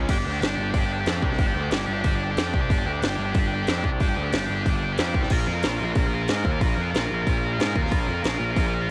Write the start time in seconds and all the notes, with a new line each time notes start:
0.09 G1 D4 G4, kick, open hi-hat, crash
0.19 D4 G4
0.25 D2 D4 G4
0.32 D4 G4
0.40 G1 D4 G4, snare, open hi-hat
0.47 D4 G4
0.55 G1 D4 G4
0.63 D4 G4
0.70 D4 G4
0.74 G1, kick, open hi-hat
0.78 D4 G4
0.86 D4 G4
0.92 D4 G4
1.01 D4 G4
1.06 F2 D4 G4, snare, open hi-hat
1.16 D4 G4
1.22 C2 D4 G4, kick
1.31 D4 G4, snare
1.38 G1 D4 G4, kick, open hi-hat
1.46 D4 G4
1.55 D2 D4 G4
1.63 D4 G4
1.70 G1 D4 G4, snare, open hi-hat
1.78 D4 G4
1.86 G1 D4 G4
1.93 D4 G4
2.00 G1 D4 G4, kick, open hi-hat
2.07 D4 G4
2.16 D4 G4
2.24 D4 G4
2.31 D4 G4
2.37 F2 D4 G4, snare, open hi-hat
2.46 D4 G4
2.54 C2 D4 G4, kick
2.61 D4 G4
2.70 G1 D4 G4, kick, open hi-hat
2.78 D4 G4
2.85 D2 D4 G4
2.93 D4 G4
3.01 G1 D4 G4, snare, open hi-hat
3.09 D4 G4
3.16 G1 D4 G4
3.23 D4 G4
3.31 G1 D4 G4, kick, open hi-hat
3.39 D4 G4
3.46 D4 G4
3.54 D4 G4
3.62 D4 G4
3.67 F2 D4 G4, snare, open hi-hat
3.77 D4 G4
3.83 C2 D4 G4, kick
3.91 D4 G4
4.00 G1 D4 G4, kick, open hi-hat
4.09 D4 G4
4.15 D2 D4 G4
4.24 D4 G4
4.31 G1 D4 G4, snare, open hi-hat
4.39 D4 G4
4.46 G1 D4 G4
4.54 D4 G4
4.62 G1 D4 G4, kick
4.66 D4 G4, open hi-hat
4.76 D4 G4
4.85 D4 G4
4.93 D4 G4
4.98 F2 D4 G4, snare, open hi-hat
5.08 D4 G4
5.14 C2 D4 G4, kick
5.23 D4 G4, snare
5.30 A#1 F4 A#4, kick, crash
5.39 F4 A#4
5.47 F2 F4 A#4
5.53 F4 A#4
5.61 A#1 F4 A#4, snare, open hi-hat
5.69 F4 A#4
5.77 F4 A#4
5.81 A#1 F4 A#4
5.92 A#1 F4 A#4, kick, open hi-hat
5.99 F4 A#4
6.06 F4 A#4
6.14 F4 A#4
6.22 F4 A#4
6.28 G#2 F4 A#4, snare, open hi-hat
6.37 F4 A#4
6.44 D#2 F4 A#4, kick
6.52 F4 A#4
6.61 A#1 F4 A#4, kick, open hi-hat
6.68 F4 A#4
6.76 F2 F4 A#4
6.82 F4 A#4
6.90 A#1 F4 A#4
6.95 F4, snare, open hi-hat
6.99 A#4
7.06 A#1 F4 A#4
7.14 F4 A#4
7.22 F4 A#4
7.27 A#1 F4 A#4, kick, open hi-hat
7.37 F4 A#4
7.45 F4 A#4
7.52 F4 A#4
7.59 G#2 F4 A#4, snare, open hi-hat
7.67 F4 A#4
7.75 D#2 F4 A#4, kick
7.82 F4 A#4
7.86 snare
7.91 A#1 F4 A#4, kick, open hi-hat
7.99 F4 A#4
8.07 F2 F4 A#4
8.14 F4 A#4
8.22 A#1 F4 A#4, snare, open hi-hat
8.29 F4 A#4
8.37 A#1 F4 A#4
8.44 F4 A#4
8.51 F4 A#4
8.56 A#1 F4 A#4, kick, open hi-hat
8.67 F4 A#4
8.74 F4 A#4
8.81 F4 A#4